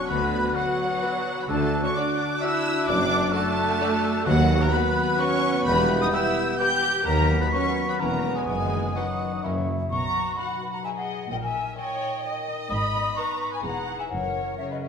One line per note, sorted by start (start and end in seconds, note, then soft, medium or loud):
0.00 0.11 B2 medium
0.00 2.71 F#3 medium
0.00 0.20 B3 medium
0.00 1.45 B3 medium
0.00 0.31 D4 medium
0.00 0.43 F#4 medium
0.00 1.45 F#4 medium
0.00 0.55 B4 medium
0.00 0.66 D5 medium
0.00 0.78 F#5 medium
0.00 1.45 F#6 medium
0.08 0.48 D2 medium
0.08 0.49 D2 medium
0.08 1.48 D3 medium
0.08 0.48 D3 medium
0.08 1.46 B3 medium
0.08 0.57 B3 medium
0.08 0.57 B4 medium
0.08 0.55 B5 loud
0.08 0.54 B5 medium
0.21 1.50 B3 medium
0.33 1.36 D4 medium
0.44 1.25 F#4 medium
0.55 1.47 F#3 medium
0.55 1.48 F#4 medium
0.55 0.64 F#4 medium
0.55 1.13 B4 medium
0.55 0.64 B4 medium
0.55 1.40 F#5 loud
0.55 1.45 F#5 medium
0.67 1.02 D5 medium
0.79 2.17 F#5 medium
0.91 1.51 B5 medium
1.02 1.10 F#4 medium
1.02 1.10 B4 medium
1.02 2.06 D5 medium
1.15 1.51 B4 medium
1.26 1.83 F#4 medium
1.37 1.72 D4 medium
1.42 1.49 B5 medium
1.47 1.87 D2 medium
1.47 1.87 D2 loud
1.47 1.87 D3 loud
1.47 2.90 D3 medium
1.47 1.83 A3 medium
1.47 4.23 D4 medium
1.47 4.27 D4 medium
1.47 4.23 F#4 medium
1.47 1.83 A4 medium
1.47 1.83 A5 loud
1.47 1.82 A5 medium
1.47 4.23 F#6 medium
1.61 3.10 A3 medium
1.73 2.74 D4 medium
1.84 1.88 C#4 medium
1.84 2.63 F#4 medium
1.84 1.89 C#5 medium
1.84 1.95 C#6 medium
1.84 1.95 C#6 loud
1.95 2.41 D4 medium
1.95 2.05 F#4 medium
1.95 2.51 A4 medium
1.95 2.40 D5 medium
1.95 2.05 D5 medium
1.95 2.42 D6 loud
1.95 2.39 D6 medium
2.07 2.39 D5 medium
2.18 3.68 F#5 medium
2.29 4.28 A5 medium
2.40 2.88 E4 medium
2.40 2.51 F#4 medium
2.40 3.56 D5 medium
2.40 2.51 D5 medium
2.40 2.87 E5 loud
2.40 2.88 E6 loud
2.40 2.84 E6 loud
2.53 3.45 A4 medium
2.64 3.33 F#4 medium
2.75 3.21 D4 medium
2.87 3.26 F#1 medium
2.87 3.26 F#1 loud
2.87 4.28 F#2 medium
2.87 3.27 F#2 loud
2.87 3.34 D4 loud
2.87 3.34 D5 loud
2.87 3.33 D6 loud
2.87 3.31 D6 loud
2.99 4.36 F#3 medium
3.11 4.13 A3 medium
3.22 4.02 D4 medium
3.32 4.25 A3 loud
3.32 3.42 F#4 medium
3.32 3.91 F#4 medium
3.32 4.27 A4 loud
3.32 3.42 D5 medium
3.32 4.25 A5 loud
3.32 4.23 A5 medium
3.46 3.79 A4 medium
3.58 4.29 D5 medium
3.69 4.95 F#5 medium
3.81 3.89 F#4 medium
3.81 3.89 D5 medium
3.92 4.60 F#4 medium
4.03 4.29 D4 medium
4.14 4.28 A3 medium
4.25 4.65 D#2 loud
4.25 4.66 D#2 loud
4.25 5.68 D#3 medium
4.25 4.62 F#3 loud
4.25 6.88 B3 medium
4.25 6.89 B3 medium
4.25 5.63 F#4 medium
4.25 4.63 F#4 loud
4.25 4.61 F#5 loud
4.25 4.59 F#5 medium
4.25 5.62 F#6 medium
4.37 5.68 F#3 medium
4.49 4.71 B3 medium
4.61 4.73 A#3 medium
4.61 5.18 F#4 medium
4.61 4.75 A#4 loud
4.61 4.73 A#5 medium
4.61 4.74 A#5 loud
4.72 5.30 B3 medium
4.72 5.19 B3 medium
4.72 4.82 F#4 medium
4.72 5.21 B4 medium
4.72 4.83 B4 medium
4.72 5.20 B5 loud
4.72 5.17 B5 medium
4.84 5.06 B4 medium
4.96 5.68 F#5 medium
5.08 6.00 B4 medium
5.19 5.66 C#4 loud
5.19 5.41 F#4 medium
5.19 5.28 F#4 medium
5.19 5.28 B4 medium
5.19 5.52 C#5 loud
5.19 5.66 C#6 loud
5.19 5.63 C#6 loud
5.31 5.53 B3 medium
5.42 5.68 F#4 medium
5.55 5.89 B3 medium
5.64 6.05 E1 medium
5.64 6.05 E1 loud
5.64 6.05 E2 loud
5.64 7.08 E3 medium
5.64 6.01 B3 medium
5.64 6.88 G4 medium
5.64 6.00 B4 loud
5.64 6.00 B5 loud
5.64 6.00 B5 medium
5.64 6.78 G6 medium
5.78 7.08 G3 medium
5.90 6.95 B3 medium
6.01 6.07 D#4 medium
6.01 6.24 B4 medium
6.01 6.07 D#5 medium
6.01 6.12 D#6 medium
6.01 6.06 D#6 loud
6.12 6.59 E4 medium
6.12 6.22 G4 medium
6.12 6.22 B4 medium
6.12 6.58 E5 loud
6.12 6.58 E6 loud
6.12 6.57 E6 medium
6.25 6.59 B4 medium
6.48 7.09 G5 medium
6.59 7.06 G4 loud
6.59 6.68 G4 medium
6.59 6.82 B4 medium
6.59 6.68 B4 medium
6.59 7.08 G5 loud
6.59 7.05 G6 loud
6.59 7.04 G6 medium
6.72 7.09 G4 medium
6.96 7.29 B3 medium
7.05 7.45 D#2 medium
7.05 7.46 D#2 medium
7.05 8.03 D#3 medium
7.05 7.41 A#3 loud
7.05 9.39 B3 medium
7.05 8.87 B3 medium
7.05 7.98 F#4 medium
7.05 7.40 A#4 loud
7.05 7.40 A#5 loud
7.05 7.39 A#5 medium
7.05 8.02 B6 medium
7.19 8.02 F#3 medium
7.30 9.46 B3 medium
7.41 7.46 B3 medium
7.41 7.46 B4 medium
7.41 7.63 B4 medium
7.41 7.52 B5 medium
7.41 7.54 B5 medium
7.52 7.88 C#4 medium
7.52 8.02 F#4 medium
7.52 7.62 F#4 medium
7.52 7.62 B4 medium
7.52 7.88 C#5 medium
7.52 7.87 C#6 loud
7.52 7.86 C#6 medium
7.65 8.35 B4 medium
7.77 9.32 B5 medium
7.88 8.00 B3 medium
7.88 8.02 B4 medium
7.88 8.02 F#5 medium
7.88 7.99 B5 medium
7.88 7.93 B5 medium
7.99 8.40 E1 medium
7.99 8.39 E2 medium
7.99 8.50 E3 medium
7.99 8.36 A#3 medium
7.99 8.47 C#4 medium
7.99 8.08 C#4 medium
7.99 8.34 A#4 medium
7.99 8.09 B4 medium
7.99 8.33 A#5 medium
7.99 8.35 A#5 medium
7.99 8.47 C#6 medium
8.12 8.50 G#3 medium
8.24 8.50 C#4 soft
8.35 8.47 G#3 medium
8.35 8.41 G#4 medium
8.35 8.95 B4 medium
8.35 8.47 G#5 medium
8.35 8.46 G#5 medium
8.46 8.88 F#1 medium
8.46 9.43 F#2 medium
8.46 8.88 F#2 medium
8.46 8.95 G#3 medium
8.46 9.42 D#4 medium
8.46 8.94 G#4 medium
8.46 8.95 G#5 medium
8.46 8.94 G#5 medium
8.46 9.44 D#6 medium
8.60 9.46 D#3 medium
8.72 9.67 F#3 soft
8.84 9.46 D#4 soft
8.95 9.44 F#3 medium
8.95 9.35 B3 medium
8.95 9.04 D#4 medium
8.95 9.43 F#4 medium
8.95 9.05 B4 medium
8.95 9.46 B4 medium
8.95 9.44 F#5 medium
8.95 9.41 F#5 soft
9.08 10.84 F#4 medium
9.20 9.46 D#5 medium
9.33 9.43 D#4 medium
9.33 9.46 B5 medium
9.42 9.84 F#1 medium
9.42 9.83 F#2 medium
9.42 9.94 F#2 medium
9.42 9.67 A#3 medium
9.42 9.67 C#4 medium
9.42 9.52 C#4 medium
9.42 9.91 E4 medium
9.42 9.52 A#4 medium
9.42 9.68 C#6 medium
9.56 9.94 C#3 soft
9.68 10.15 F#3 soft
9.80 9.94 C#4 medium
9.90 10.29 B1 medium
9.90 10.29 B2 medium
9.90 11.34 B2 medium
9.90 10.82 F#4 medium
9.90 10.36 A#5 medium
9.90 10.39 C#6 loud
9.90 10.36 C#6 medium
10.16 11.34 F#3 soft
10.37 11.08 D#4 soft
10.37 10.73 D#5 medium
10.37 10.72 F#5 medium
10.37 10.73 B5 medium
10.37 10.72 B5 medium
10.63 11.34 B4 soft
10.73 10.85 F#5 medium
10.73 10.79 A#5 medium
10.73 10.85 A#5 medium
10.84 11.34 F#4 medium
10.84 11.31 G#4 medium
10.84 11.20 D#5 medium
10.84 10.89 E5 medium
10.84 10.90 G#5 medium
10.84 10.97 G#5 medium
10.97 11.29 D#5 medium
10.97 11.31 F#5 medium
11.09 11.77 D#4 soft
11.30 11.69 A#1 medium
11.30 11.69 A#2 medium
11.30 12.73 A#2 medium
11.30 11.77 A#4 medium
11.30 11.35 D#5 medium
11.30 11.37 G5 medium
11.30 11.43 G5 medium
11.42 11.78 E5 medium
11.42 11.77 G#5 medium
11.56 12.73 A#3 soft
11.77 12.46 D#4 medium
11.77 12.12 C#5 medium
11.77 12.24 C#5 medium
11.77 12.47 D#5 medium
11.77 12.46 G5 medium
11.77 12.44 G5 medium
12.02 12.73 C#5 medium
12.23 12.73 A#4 medium
12.23 12.58 C#5 medium
12.23 13.15 D#5 medium
12.48 13.16 D#4 medium
12.70 13.07 G#1 medium
12.70 13.07 G#2 medium
12.70 13.66 G#2 medium
12.70 13.14 B5 medium
12.70 13.13 D#6 medium
12.70 13.13 D#6 loud
12.94 14.13 B3 medium
13.15 13.86 D#4 medium
13.15 13.52 B4 medium
13.15 13.64 B4 medium
13.15 13.52 A#5 medium
13.15 13.53 C#6 medium
13.15 13.50 C#6 medium
13.41 14.14 B4 medium
13.52 13.64 G#5 medium
13.52 13.62 B5 medium
13.52 13.63 B5 medium
13.62 14.01 E1 medium
13.62 14.01 E2 medium
13.62 14.13 E2 medium
13.62 13.99 G#4 medium
13.62 14.11 G#4 medium
13.62 13.99 F#5 medium
13.62 13.98 A#5 medium
13.87 14.13 D#4 soft
13.87 14.13 G#4 soft
13.99 14.11 E5 medium
13.99 14.10 G#5 medium
13.99 14.05 G#5 medium
14.10 14.49 F#1 medium
14.10 14.88 F#2 soft
14.10 14.49 F#2 medium
14.10 14.88 A#4 medium
14.10 14.58 C#5 medium
14.10 14.57 F#5 medium
14.10 14.56 F#5 medium
14.35 14.88 A#3 soft
14.58 14.88 C#3 medium
14.58 14.88 C#4 soft
14.58 14.88 A#4 soft
14.58 14.71 C#5 medium
14.58 14.64 E5 medium
14.58 14.70 E5 medium
14.71 14.77 B4 soft
14.71 14.82 D#5 medium
14.71 14.77 D#5 medium
14.82 14.88 F#4 soft
14.82 14.88 C#5 soft
14.82 14.88 E5 medium